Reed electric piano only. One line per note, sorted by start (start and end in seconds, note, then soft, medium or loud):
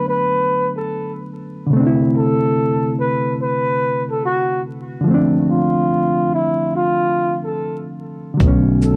0.00 1.66 D3 medium
0.00 1.68 F#3 medium
0.00 1.70 A3 medium
0.00 1.71 B3 medium
0.00 1.73 D4 medium
1.67 5.01 C3 medium
1.67 4.99 D3 medium
1.73 5.03 A3 medium
1.73 5.04 C4 medium
1.80 1.85 D4 medium
1.87 5.09 E4 medium
5.01 8.33 D3 medium
5.01 8.35 F3 medium
5.08 8.36 A3 medium
5.08 8.38 C4 medium
5.14 8.40 D4 medium
8.34 8.96 D3 medium
8.34 8.96 F#3 medium
8.40 8.96 A3 medium
8.40 8.96 B3 medium
8.47 8.96 C#4 medium